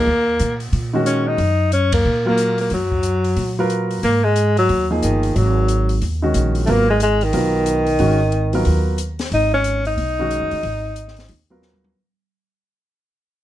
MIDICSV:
0, 0, Header, 1, 5, 480
1, 0, Start_track
1, 0, Tempo, 330215
1, 100, Time_signature, 4, 2, 24, 8
1, 19525, End_track
2, 0, Start_track
2, 0, Title_t, "Grand piano"
2, 0, Program_c, 0, 0
2, 1359, Note_on_c, 0, 51, 66
2, 1372, Note_on_c, 0, 61, 63
2, 1374, Note_on_c, 0, 56, 65
2, 1385, Note_on_c, 0, 66, 74
2, 1982, Note_off_c, 0, 51, 0
2, 1989, Note_off_c, 0, 56, 0
2, 1989, Note_off_c, 0, 61, 0
2, 1995, Note_off_c, 0, 66, 0
2, 3278, Note_on_c, 0, 54, 66
2, 3284, Note_on_c, 0, 58, 63
2, 3296, Note_on_c, 0, 65, 63
2, 3297, Note_on_c, 0, 70, 76
2, 3901, Note_off_c, 0, 54, 0
2, 3905, Note_off_c, 0, 58, 0
2, 3910, Note_off_c, 0, 65, 0
2, 3911, Note_off_c, 0, 70, 0
2, 5214, Note_on_c, 0, 54, 70
2, 5216, Note_on_c, 0, 65, 68
2, 5221, Note_on_c, 0, 71, 66
2, 5231, Note_on_c, 0, 70, 83
2, 5830, Note_off_c, 0, 54, 0
2, 5831, Note_off_c, 0, 65, 0
2, 5834, Note_off_c, 0, 71, 0
2, 5839, Note_off_c, 0, 70, 0
2, 7131, Note_on_c, 0, 53, 65
2, 7132, Note_on_c, 0, 58, 59
2, 7135, Note_on_c, 0, 63, 61
2, 7144, Note_on_c, 0, 68, 69
2, 7750, Note_off_c, 0, 53, 0
2, 7750, Note_off_c, 0, 58, 0
2, 7751, Note_off_c, 0, 63, 0
2, 7756, Note_off_c, 0, 68, 0
2, 9048, Note_on_c, 0, 51, 65
2, 9056, Note_on_c, 0, 56, 61
2, 9062, Note_on_c, 0, 61, 60
2, 9064, Note_on_c, 0, 66, 71
2, 9669, Note_off_c, 0, 51, 0
2, 9673, Note_off_c, 0, 56, 0
2, 9676, Note_off_c, 0, 61, 0
2, 9677, Note_off_c, 0, 66, 0
2, 9706, Note_on_c, 0, 54, 63
2, 9713, Note_on_c, 0, 59, 57
2, 9717, Note_on_c, 0, 65, 59
2, 9727, Note_on_c, 0, 70, 73
2, 9978, Note_off_c, 0, 54, 0
2, 9981, Note_off_c, 0, 59, 0
2, 9983, Note_off_c, 0, 65, 0
2, 9988, Note_off_c, 0, 70, 0
2, 10657, Note_on_c, 0, 54, 63
2, 10664, Note_on_c, 0, 59, 58
2, 10667, Note_on_c, 0, 70, 69
2, 10668, Note_on_c, 0, 65, 58
2, 11383, Note_off_c, 0, 54, 0
2, 11387, Note_off_c, 0, 59, 0
2, 11388, Note_off_c, 0, 70, 0
2, 11389, Note_off_c, 0, 65, 0
2, 11618, Note_on_c, 0, 56, 56
2, 11621, Note_on_c, 0, 51, 64
2, 11624, Note_on_c, 0, 61, 57
2, 11630, Note_on_c, 0, 66, 66
2, 11894, Note_off_c, 0, 56, 0
2, 11896, Note_off_c, 0, 51, 0
2, 11897, Note_off_c, 0, 61, 0
2, 11900, Note_off_c, 0, 66, 0
2, 12404, Note_on_c, 0, 54, 68
2, 12409, Note_on_c, 0, 59, 61
2, 12422, Note_on_c, 0, 65, 61
2, 12425, Note_on_c, 0, 70, 75
2, 13027, Note_off_c, 0, 54, 0
2, 13030, Note_off_c, 0, 59, 0
2, 13036, Note_off_c, 0, 65, 0
2, 13038, Note_off_c, 0, 70, 0
2, 14816, Note_on_c, 0, 51, 63
2, 14823, Note_on_c, 0, 56, 61
2, 14824, Note_on_c, 0, 61, 57
2, 14835, Note_on_c, 0, 66, 75
2, 15432, Note_off_c, 0, 51, 0
2, 15436, Note_off_c, 0, 56, 0
2, 15437, Note_off_c, 0, 61, 0
2, 15442, Note_off_c, 0, 66, 0
2, 16720, Note_on_c, 0, 54, 61
2, 16730, Note_on_c, 0, 59, 60
2, 16733, Note_on_c, 0, 65, 59
2, 16737, Note_on_c, 0, 70, 67
2, 17344, Note_off_c, 0, 54, 0
2, 17349, Note_off_c, 0, 59, 0
2, 17351, Note_off_c, 0, 65, 0
2, 17353, Note_off_c, 0, 70, 0
2, 19525, End_track
3, 0, Start_track
3, 0, Title_t, "Alto saxophone"
3, 0, Program_c, 1, 65
3, 0, Note_on_c, 1, 58, 96
3, 825, Note_off_c, 1, 58, 0
3, 1546, Note_on_c, 1, 61, 89
3, 1862, Note_on_c, 1, 63, 101
3, 1884, Note_off_c, 1, 61, 0
3, 2509, Note_off_c, 1, 63, 0
3, 2520, Note_on_c, 1, 61, 97
3, 2792, Note_off_c, 1, 61, 0
3, 2819, Note_on_c, 1, 58, 93
3, 3257, Note_off_c, 1, 58, 0
3, 3323, Note_on_c, 1, 58, 97
3, 3750, Note_off_c, 1, 58, 0
3, 3792, Note_on_c, 1, 58, 82
3, 3943, Note_off_c, 1, 58, 0
3, 3984, Note_on_c, 1, 54, 80
3, 5344, Note_off_c, 1, 54, 0
3, 5873, Note_on_c, 1, 58, 93
3, 6171, Note_on_c, 1, 56, 91
3, 6193, Note_off_c, 1, 58, 0
3, 6648, Note_off_c, 1, 56, 0
3, 6666, Note_on_c, 1, 54, 93
3, 7102, Note_off_c, 1, 54, 0
3, 7309, Note_on_c, 1, 51, 74
3, 7796, Note_on_c, 1, 54, 82
3, 7818, Note_off_c, 1, 51, 0
3, 8750, Note_off_c, 1, 54, 0
3, 9680, Note_on_c, 1, 57, 79
3, 9752, Note_on_c, 1, 58, 100
3, 9774, Note_off_c, 1, 57, 0
3, 10025, Note_off_c, 1, 58, 0
3, 10033, Note_on_c, 1, 56, 85
3, 10186, Note_off_c, 1, 56, 0
3, 10215, Note_on_c, 1, 56, 100
3, 10523, Note_on_c, 1, 51, 92
3, 10545, Note_off_c, 1, 56, 0
3, 13082, Note_off_c, 1, 51, 0
3, 13578, Note_on_c, 1, 63, 97
3, 13844, Note_off_c, 1, 63, 0
3, 13867, Note_on_c, 1, 61, 92
3, 14304, Note_off_c, 1, 61, 0
3, 14347, Note_on_c, 1, 63, 103
3, 16855, Note_off_c, 1, 63, 0
3, 19525, End_track
4, 0, Start_track
4, 0, Title_t, "Upright bass"
4, 0, Program_c, 2, 32
4, 99, Note_on_c, 2, 39, 80
4, 546, Note_off_c, 2, 39, 0
4, 585, Note_on_c, 2, 46, 69
4, 1029, Note_off_c, 2, 46, 0
4, 1054, Note_on_c, 2, 46, 80
4, 1968, Note_off_c, 2, 46, 0
4, 2009, Note_on_c, 2, 42, 83
4, 2925, Note_off_c, 2, 42, 0
4, 2980, Note_on_c, 2, 46, 86
4, 3891, Note_off_c, 2, 46, 0
4, 3941, Note_on_c, 2, 42, 82
4, 4852, Note_off_c, 2, 42, 0
4, 4893, Note_on_c, 2, 46, 79
4, 5809, Note_off_c, 2, 46, 0
4, 5861, Note_on_c, 2, 44, 78
4, 6773, Note_off_c, 2, 44, 0
4, 6828, Note_on_c, 2, 39, 80
4, 7271, Note_off_c, 2, 39, 0
4, 7305, Note_on_c, 2, 31, 71
4, 7750, Note_off_c, 2, 31, 0
4, 7792, Note_on_c, 2, 32, 88
4, 8700, Note_off_c, 2, 32, 0
4, 8752, Note_on_c, 2, 39, 78
4, 9195, Note_off_c, 2, 39, 0
4, 9224, Note_on_c, 2, 34, 79
4, 9670, Note_off_c, 2, 34, 0
4, 9705, Note_on_c, 2, 32, 89
4, 10617, Note_off_c, 2, 32, 0
4, 10663, Note_on_c, 2, 35, 78
4, 11576, Note_off_c, 2, 35, 0
4, 11626, Note_on_c, 2, 32, 81
4, 12537, Note_off_c, 2, 32, 0
4, 12586, Note_on_c, 2, 39, 78
4, 13497, Note_off_c, 2, 39, 0
4, 13542, Note_on_c, 2, 32, 82
4, 14455, Note_off_c, 2, 32, 0
4, 14495, Note_on_c, 2, 35, 75
4, 15094, Note_off_c, 2, 35, 0
4, 15137, Note_on_c, 2, 42, 57
4, 15289, Note_off_c, 2, 42, 0
4, 15296, Note_on_c, 2, 39, 62
4, 15445, Note_off_c, 2, 39, 0
4, 15454, Note_on_c, 2, 32, 85
4, 16370, Note_off_c, 2, 32, 0
4, 16417, Note_on_c, 2, 39, 72
4, 17331, Note_off_c, 2, 39, 0
4, 19525, End_track
5, 0, Start_track
5, 0, Title_t, "Drums"
5, 574, Note_on_c, 9, 42, 52
5, 720, Note_off_c, 9, 42, 0
5, 874, Note_on_c, 9, 46, 37
5, 1020, Note_off_c, 9, 46, 0
5, 1058, Note_on_c, 9, 46, 42
5, 1203, Note_off_c, 9, 46, 0
5, 1542, Note_on_c, 9, 42, 56
5, 1688, Note_off_c, 9, 42, 0
5, 2010, Note_on_c, 9, 46, 41
5, 2155, Note_off_c, 9, 46, 0
5, 2498, Note_on_c, 9, 42, 51
5, 2644, Note_off_c, 9, 42, 0
5, 2796, Note_on_c, 9, 51, 73
5, 2802, Note_on_c, 9, 36, 80
5, 2942, Note_off_c, 9, 51, 0
5, 2947, Note_off_c, 9, 36, 0
5, 3453, Note_on_c, 9, 42, 50
5, 3598, Note_off_c, 9, 42, 0
5, 3750, Note_on_c, 9, 46, 38
5, 3895, Note_off_c, 9, 46, 0
5, 3925, Note_on_c, 9, 46, 43
5, 4071, Note_off_c, 9, 46, 0
5, 4241, Note_on_c, 9, 36, 53
5, 4386, Note_off_c, 9, 36, 0
5, 4404, Note_on_c, 9, 42, 51
5, 4549, Note_off_c, 9, 42, 0
5, 4717, Note_on_c, 9, 46, 38
5, 4862, Note_off_c, 9, 46, 0
5, 4891, Note_on_c, 9, 46, 43
5, 5036, Note_off_c, 9, 46, 0
5, 5376, Note_on_c, 9, 42, 55
5, 5521, Note_off_c, 9, 42, 0
5, 5678, Note_on_c, 9, 46, 37
5, 5824, Note_off_c, 9, 46, 0
5, 5858, Note_on_c, 9, 46, 43
5, 6004, Note_off_c, 9, 46, 0
5, 6335, Note_on_c, 9, 42, 50
5, 6480, Note_off_c, 9, 42, 0
5, 6644, Note_on_c, 9, 46, 35
5, 6789, Note_off_c, 9, 46, 0
5, 6819, Note_on_c, 9, 46, 45
5, 6964, Note_off_c, 9, 46, 0
5, 7304, Note_on_c, 9, 42, 56
5, 7450, Note_off_c, 9, 42, 0
5, 7605, Note_on_c, 9, 46, 38
5, 7750, Note_off_c, 9, 46, 0
5, 7789, Note_on_c, 9, 46, 39
5, 7934, Note_off_c, 9, 46, 0
5, 8262, Note_on_c, 9, 42, 50
5, 8407, Note_off_c, 9, 42, 0
5, 8563, Note_on_c, 9, 46, 38
5, 8709, Note_off_c, 9, 46, 0
5, 8745, Note_on_c, 9, 46, 46
5, 8890, Note_off_c, 9, 46, 0
5, 9219, Note_on_c, 9, 42, 54
5, 9364, Note_off_c, 9, 42, 0
5, 9519, Note_on_c, 9, 46, 40
5, 9665, Note_off_c, 9, 46, 0
5, 9698, Note_on_c, 9, 46, 42
5, 9844, Note_off_c, 9, 46, 0
5, 10177, Note_on_c, 9, 42, 51
5, 10323, Note_off_c, 9, 42, 0
5, 10481, Note_on_c, 9, 46, 36
5, 10627, Note_off_c, 9, 46, 0
5, 10654, Note_on_c, 9, 46, 47
5, 10800, Note_off_c, 9, 46, 0
5, 11134, Note_on_c, 9, 42, 54
5, 11279, Note_off_c, 9, 42, 0
5, 11433, Note_on_c, 9, 46, 37
5, 11578, Note_off_c, 9, 46, 0
5, 11610, Note_on_c, 9, 46, 44
5, 11756, Note_off_c, 9, 46, 0
5, 12094, Note_on_c, 9, 42, 50
5, 12240, Note_off_c, 9, 42, 0
5, 12399, Note_on_c, 9, 46, 38
5, 12544, Note_off_c, 9, 46, 0
5, 12573, Note_on_c, 9, 46, 46
5, 12719, Note_off_c, 9, 46, 0
5, 13055, Note_on_c, 9, 42, 53
5, 13200, Note_off_c, 9, 42, 0
5, 13360, Note_on_c, 9, 46, 39
5, 13368, Note_on_c, 9, 38, 53
5, 13506, Note_off_c, 9, 46, 0
5, 13513, Note_off_c, 9, 38, 0
5, 13543, Note_on_c, 9, 46, 42
5, 13688, Note_off_c, 9, 46, 0
5, 14015, Note_on_c, 9, 42, 49
5, 14161, Note_off_c, 9, 42, 0
5, 14322, Note_on_c, 9, 46, 36
5, 14467, Note_off_c, 9, 46, 0
5, 14503, Note_on_c, 9, 46, 42
5, 14648, Note_off_c, 9, 46, 0
5, 14981, Note_on_c, 9, 42, 55
5, 15126, Note_off_c, 9, 42, 0
5, 15280, Note_on_c, 9, 46, 36
5, 15426, Note_off_c, 9, 46, 0
5, 15454, Note_on_c, 9, 46, 40
5, 15599, Note_off_c, 9, 46, 0
5, 15929, Note_on_c, 9, 42, 47
5, 16074, Note_off_c, 9, 42, 0
5, 16103, Note_on_c, 9, 38, 28
5, 16229, Note_on_c, 9, 46, 39
5, 16248, Note_off_c, 9, 38, 0
5, 16261, Note_on_c, 9, 38, 41
5, 16374, Note_off_c, 9, 46, 0
5, 16404, Note_on_c, 9, 46, 41
5, 16406, Note_off_c, 9, 38, 0
5, 16549, Note_off_c, 9, 46, 0
5, 16894, Note_on_c, 9, 38, 43
5, 17039, Note_off_c, 9, 38, 0
5, 17059, Note_on_c, 9, 47, 55
5, 17204, Note_off_c, 9, 47, 0
5, 17214, Note_on_c, 9, 47, 67
5, 17360, Note_off_c, 9, 47, 0
5, 19525, End_track
0, 0, End_of_file